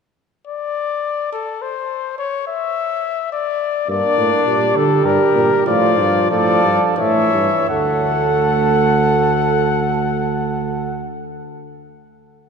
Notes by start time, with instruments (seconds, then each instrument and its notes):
0.47 trumpet D5
1.32 trumpet A4
1.62 trumpet C5
2.18 trumpet C#5
2.47 trumpet E5
3.33 trumpet D5
3.87 bass trombone G2, trombone A#3, flugelhorn D4, trumpet D5
4.17 bass trombone A2
4.46 bass trombone A#2, trombone G3
4.75 bass trombone D3, trumpet A4
5.04 bass trombone G2, flugelhorn G4, trumpet A#4
5.35 bass trombone A#2
5.66 bass trombone A2, trombone F3, flugelhorn F4, trumpet D5
5.98 bass trombone G2
6.30 bass trombone A2, trombone F3, flugelhorn A4, trumpet D5
6.64 bass trombone G2
6.97 bass trombone A2, trombone E3, flugelhorn C#5, trumpet E5
7.33 bass trombone G2
7.68 bass trombone D2, trombone A3, flugelhorn A4, trumpet F#5